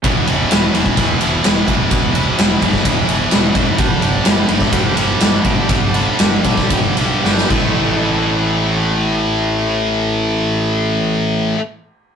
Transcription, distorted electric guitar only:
X:1
M:4/4
L:1/8
Q:1/4=122
K:Am
V:1 name="Distorted electric guitar" clef=bass
[E,,B,,E,] [E,,B,,E,] [E,,B,,E,] [E,,B,,E,] [E,,B,,E,] [E,,B,,E,] [E,,B,,E,] [E,,B,,E,] | [E,,B,,E,] [E,,B,,E,] [E,,B,,E,] [E,,B,,E,] [E,,B,,E,] [E,,B,,E,] [E,,B,,E,] [E,,B,,E,] | [G,,D,G,] [G,,D,G,] [G,,D,G,] [G,,D,G,] [G,,D,G,] [G,,D,G,] [G,,D,G,] [G,,D,G,] | [G,,D,G,] [G,,D,G,] [G,,D,G,] [G,,D,G,] [G,,D,G,] [G,,D,G,] [G,,D,G,] [A,,E,A,]- |
[A,,E,A,]8- | [A,,E,A,]8 |]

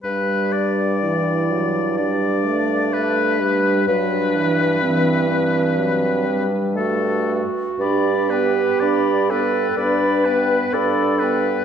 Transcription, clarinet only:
X:1
M:4/4
L:1/8
Q:1/4=62
K:G
V:1 name="Clarinet"
D2 E2 D4 | D2 C C2 z F2 | G3 A B2 A2 |]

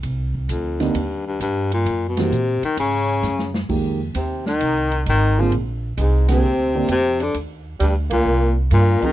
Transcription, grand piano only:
X:1
M:4/4
L:1/8
Q:"Swing" 1/4=131
K:Cm
V:1 name="Grand piano"
z3 [D,B,CE] z4 | z [_F,B,C_G] z6 | [E,A,B,G] z6 [D,B,CA] | z3 [D,B,CA] z [D,B,CD] z2 |
z6 z [F,CEA] |]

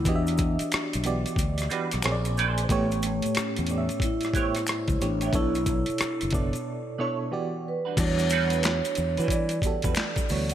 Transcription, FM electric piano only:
X:1
M:4/4
L:1/8
Q:"Swing 16ths" 1/4=91
K:Edor
V:1 name="FM electric piano"
[E,B,FG^de]3 [E,B,FG=d]2 [E,B,FGd] [^A,,^A,^B,^Gcd]2 | [A,,A,B,Gc]3 [A,,A,B,Gde]2 [A,,A,B,G=c^c]2 [A,,A,B,Gc] | [B,,B,DEAc]3 [B,,B,DEAd]2 [B,,B,DEAc] [E,B,FGd]2 | [E,G,B,DF]4 z [E,B,FGA]2 [E,G,B,Fc] |]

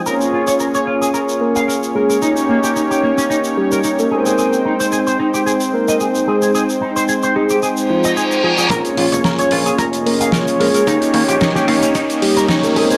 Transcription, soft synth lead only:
X:1
M:4/4
L:1/16
Q:"Swing 16ths" 1/4=111
K:Ab
V:1 name="Soft synth lead"
z8 z2 B2 z2 A2 | z8 z2 G2 z B B2- | B2 z8 B2 z2 A2 | z6 A2 z2 F2 z2 F F |
z8 z2 B2 z2 A2 | z8 z2 G2 z B B2 |]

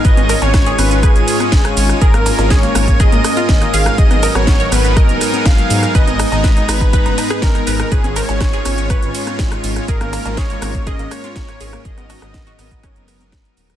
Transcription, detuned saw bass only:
X:1
M:4/4
L:1/16
Q:1/4=122
K:Blyd
V:1 name="Detuned saw bass" clef=bass
G,,,2 z G,,,2 z G,,,2 z G,,, z2 G,,, z G,,, z | G,,,2 z G,,,2 z G,,,2 z G,,, z2 G,,, z G,,, z | G,,,2 z G,,,2 z G,,,2 z F,,, z2 G,,, z G,, z | G,,,2 z G,,,2 z G,,,2 z F,,, z2 G,,, z G,,, z |
G,,,2 z G,,,2 z G,,,2 z G,,, z2 G,,, z G,,, z | G,,,2 z G,,,2 z G,,,2 z G,,, z2 G,,, z G,,, z | G,,,2 z G,,,2 z G,,,2 z F,,,3 G,,, z D,,, z |]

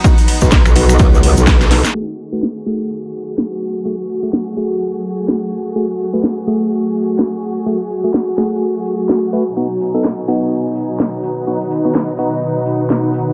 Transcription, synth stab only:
X:1
M:4/4
L:1/16
Q:"Swing 16ths" 1/4=126
K:F#dor
V:1 name="Synth stab"
[B,DF] z2 [B,DF] z2 [B,DF]8 [B,DA] z | [A,FG] z2 [A,FB] z2 [A,FG]8- [A,FG]2 | [A,FG] z2 [A,FG] z2 [A,FG]8- [A,FG]2 | [A,FG] z2 [A,FB] z2 [A,FG]8- [A,FG]2 |
[A,FG] z2 [A,FG] z2 [A,FG]8 [A,FB] z | [B,DF] z2 [B,DA] z2 [B,DF]8- [B,DF]2 | [B,DF] z2 [B,DF] z2 [B,DF]8- [B,DF]2 |]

